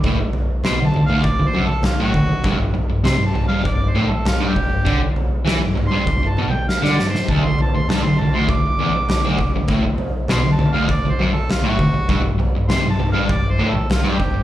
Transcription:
<<
  \new Staff \with { instrumentName = "Harmonica" } { \time 4/4 \key g \major \tempo 4 = 100 r4 \tuplet 3/2 { c'''8 a''8 f''8 d''8 c''8 a'8 f'8 fis'4~ } | fis'16 r8. \tuplet 3/2 { c'''8 a''8 f''8 d''8 c''8 a'8 f'8 g'4~ } | g'16 r8. \tuplet 3/2 { r4 c'''8~ c'''8 a''8 g''8 f''8 d''8 c''8 } | a''16 c'''16 a''16 c'''16 a''16 c'''16 a''16 c'''16 d'''2 |
r4 \tuplet 3/2 { c'''8 a''8 f''8 d''8 c''8 a'8 f'8 fis'4~ } | fis'16 r8. \tuplet 3/2 { c'''8 a''8 f''8 d''8 c''8 a'8 f'8 g'4 } | }
  \new Staff \with { instrumentName = "Distorted electric guitar" } { \clef bass \time 4/4 \key g \major a,16 r8. b,16 d,16 d,16 d,16 r16 d,16 fis,16 r8 a,16 d,16 r16 | g,16 g,16 r16 g,16 c16 g,16 g,16 g,16 g,8 a,16 r8 g,16 r16 g,16 | d16 r8. e16 g,16 g,16 g,16 r16 g,16 b,16 r8 d16 g,16 r16 | d,16 d,16 r16 d,16 g,16 d,16 d,16 d,16 d,8 e,16 r8 d,16 r16 d,16 |
a,16 r8. b,16 d,16 d,16 d,16 r16 d,16 fis,16 r8 a,16 d,16 r16 | g,16 g,16 r16 g,16 c16 g,16 g,16 g,16 g,8 a,16 r8 g,16 r16 g,16 | }
  \new DrumStaff \with { instrumentName = "Drums" } \drummode { \time 4/4 <bd tomfh>8 tomfh8 <sn tomfh>8 tomfh8 <bd tomfh>8 tomfh8 <sn tomfh>8 <bd tomfh>8 | <bd tomfh>8 tomfh8 <sn tomfh>8 tomfh8 <bd tomfh>8 tomfh8 <sn tomfh>8 <bd tomfh>8 | <bd tomfh>8 tomfh8 <sn tomfh>8 tomfh8 <bd tomfh>8 tomfh8 sn16 sn16 sn16 sn16 | <bd tomfh>8 tomfh8 <sn tomfh>8 tomfh8 <bd tomfh>8 tomfh8 <sn tomfh>8 <bd tomfh>8 |
<bd tomfh>8 tomfh8 <sn tomfh>8 tomfh8 <bd tomfh>8 tomfh8 <sn tomfh>8 <bd tomfh>8 | <bd tomfh>8 tomfh8 <sn tomfh>8 tomfh8 <bd tomfh>8 tomfh8 <sn tomfh>8 <bd tomfh>8 | }
>>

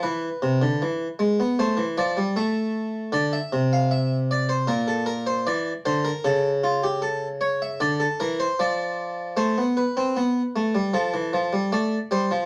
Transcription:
<<
  \new Staff \with { instrumentName = "Harpsichord" } { \time 4/4 \key d \minor \tempo 4 = 77 b'2 c''8 d''8 e''4 | d''16 e''8 f''16 e''8 d''16 c''16 bes'16 a'16 bes'16 c''16 d''8 c''16 bes'16 | a'8 f'16 g'16 a'8 cis''16 e''16 d''16 a'16 bes'16 c''16 d''4 | c''8 b'4. a'4 d''8 c''8 | }
  \new Staff \with { instrumentName = "Harpsichord" } { \clef bass \time 4/4 \key d \minor e8 c16 d16 e8 gis16 b16 a16 e16 f16 g16 a4 | d8 c4. bes,4 e8 d8 | cis2 d8 e8 f4 | a16 b8 c'16 b8 a16 g16 f16 e16 f16 g16 a8 g16 f16 | }
>>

